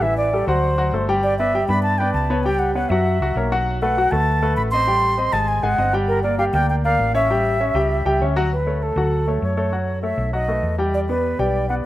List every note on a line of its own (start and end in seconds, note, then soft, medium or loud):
0.00 0.42 A1 medium
0.00 0.27 E3 medium
0.00 0.27 E4 medium
0.00 0.17 E5 loud
0.00 0.28 E5 medium
0.17 0.45 D5 loud
0.33 0.45 G3 medium
0.33 0.45 G4 medium
0.33 0.46 A4 medium
0.47 0.90 D2 medium
0.47 0.72 F#3 medium
0.47 0.73 F#4 medium
0.47 1.04 C5 loud
0.47 0.73 F#5 medium
0.78 0.90 F#3 medium
0.78 0.90 F#4 medium
0.78 0.91 F#5 medium
0.93 1.63 G1 medium
0.93 1.06 A3 medium
0.93 1.06 A4 medium
0.93 1.06 C5 medium
1.09 1.33 G3 loud
1.09 1.33 G4 medium
1.09 1.34 G5 medium
1.23 1.37 D5 loud
1.39 1.52 B3 medium
1.39 1.52 B4 medium
1.39 1.52 D5 medium
1.39 1.67 E5 loud
1.55 1.67 G3 medium
1.55 1.67 G4 medium
1.55 1.67 G5 medium
1.68 2.11 G2 medium
1.68 1.94 B3 medium
1.68 1.94 B4 medium
1.68 1.95 D5 medium
1.68 1.82 B5 loud
1.83 2.00 A5 loud
1.98 2.24 B3 medium
1.98 2.25 B4 medium
1.98 2.25 D5 medium
1.98 2.13 G5 loud
2.14 2.85 C#2 medium
2.14 2.42 A5 medium
2.30 2.42 B3 medium
2.30 2.42 B4 medium
2.30 2.43 C#5 medium
2.44 2.70 G3 medium
2.44 2.70 G4 medium
2.44 2.60 G5 medium
2.44 2.70 G5 medium
2.59 2.74 F#5 medium
2.74 2.88 B3 medium
2.74 2.88 B4 medium
2.74 2.88 C#5 medium
2.74 2.91 F#5 medium
2.89 3.18 F#2 loud
2.89 3.16 F#3 medium
2.89 3.16 F#4 medium
2.89 3.50 E5 medium
2.89 3.16 F#5 medium
3.20 3.35 C#2 medium
3.20 3.34 F#3 medium
3.20 3.34 F#4 medium
3.20 3.34 F#5 medium
3.36 4.06 B1 medium
3.36 3.49 A#3 medium
3.36 3.49 A#4 medium
3.36 3.49 C#5 medium
3.52 3.76 F#3 medium
3.52 3.77 F#4 medium
3.52 3.77 F#5 medium
3.82 3.94 A3 medium
3.82 3.94 A4 medium
3.82 3.95 B4 medium
3.82 4.13 F#5 medium
3.97 4.10 F#3 medium
3.97 4.10 F#4 medium
3.97 4.10 F#5 medium
4.11 4.54 D2 loud
4.11 4.37 A3 medium
4.11 4.37 A4 medium
4.11 4.37 B4 medium
4.11 4.56 A5 loud
4.42 4.67 A3 medium
4.42 4.67 A4 medium
4.42 4.67 B4 medium
4.56 5.28 A1 medium
4.56 4.62 B5 loud
4.71 4.85 C4 medium
4.71 4.85 C5 medium
4.71 4.86 D#5 medium
4.71 5.34 C6 loud
4.87 5.12 G3 medium
4.87 5.12 G4 medium
4.87 5.13 G5 medium
5.17 5.30 C4 medium
5.17 5.30 C5 medium
5.17 5.31 D#5 medium
5.33 5.61 G#1 loud
5.33 5.58 G#3 medium
5.33 5.58 G#4 medium
5.33 5.58 G#5 medium
5.33 5.50 A5 loud
5.48 5.64 G#5 medium
5.63 5.77 G#1 medium
5.63 5.76 G#3 medium
5.63 5.76 G#4 medium
5.63 5.93 F#5 loud
5.63 5.76 G#5 medium
5.78 6.49 G1 medium
5.78 5.91 C4 medium
5.78 5.91 C5 medium
5.78 5.91 D#5 medium
5.93 6.18 G3 loud
5.93 6.19 G4 medium
5.93 6.19 G5 medium
6.08 6.22 A#4 medium
6.23 6.36 A#3 medium
6.23 6.37 A#4 medium
6.23 6.37 D5 medium
6.38 6.51 G3 medium
6.38 6.51 G4 medium
6.38 6.44 F5 loud
6.38 6.51 G5 medium
6.53 6.96 D2 loud
6.53 6.79 A#3 medium
6.53 6.79 A#4 medium
6.53 6.79 D5 medium
6.53 6.68 G5 loud
6.70 6.76 G5 medium
6.85 7.09 A#3 medium
6.85 7.10 A#4 medium
6.85 7.10 D5 medium
6.85 7.13 F5 medium
6.99 7.70 A1 medium
7.14 7.27 C#4 medium
7.14 7.27 C#5 medium
7.14 7.27 E5 medium
7.14 8.32 E5 medium
7.30 7.55 G3 medium
7.30 7.55 G4 medium
7.30 7.55 G5 medium
7.60 7.73 C#4 medium
7.60 7.73 C#5 medium
7.60 7.73 E5 medium
7.74 8.03 C#2 loud
7.74 8.00 G3 medium
7.74 8.00 G4 medium
7.74 8.01 G5 medium
8.05 8.20 C#2 medium
8.05 8.18 G3 medium
8.05 8.18 G4 medium
8.05 8.18 G5 medium
8.20 8.91 D2 medium
8.20 8.34 C#4 medium
8.20 8.34 C#5 medium
8.20 8.34 E5 medium
8.36 8.49 F#3 loud
8.36 8.49 F#4 loud
8.36 8.49 F#5 medium
8.53 8.84 B4 medium
8.67 8.91 A3 medium
8.67 8.92 A4 medium
8.67 8.92 C#5 medium
8.83 9.43 A4 medium
8.96 9.38 D2 medium
8.96 9.22 F#3 medium
8.96 9.22 F#4 medium
8.96 9.22 F#5 medium
9.28 9.52 A3 medium
9.28 9.53 A4 medium
9.28 9.52 C#5 medium
9.42 10.12 F#2 medium
9.42 9.99 C#5 medium
9.57 9.70 A3 medium
9.57 9.70 A4 medium
9.57 9.70 C#5 medium
9.72 9.97 F#3 medium
9.72 9.97 F#4 medium
9.72 9.98 F#5 medium
10.03 10.28 A3 medium
10.03 10.28 A4 medium
10.03 10.28 C#5 medium
10.03 10.31 E5 medium
10.18 10.60 B1 medium
10.33 10.45 F#3 medium
10.33 10.46 F#4 medium
10.33 10.76 D#5 medium
10.33 10.46 F#5 medium
10.48 10.73 A3 medium
10.48 10.73 A4 medium
10.48 10.73 B4 medium
10.63 11.33 E2 medium
10.78 11.03 G3 medium
10.78 11.04 G4 medium
10.78 11.04 G5 medium
10.94 11.00 D5 medium
11.09 11.34 B3 medium
11.09 11.41 B4 medium
11.09 11.34 B4 medium
11.09 11.34 D5 medium
11.39 11.81 B1 medium
11.39 11.64 G3 medium
11.39 11.64 G4 medium
11.39 11.68 D5 medium
11.39 11.64 G5 medium
11.69 11.86 B3 medium
11.69 11.86 B4 medium
11.69 11.86 D5 medium
11.69 11.75 F#5 medium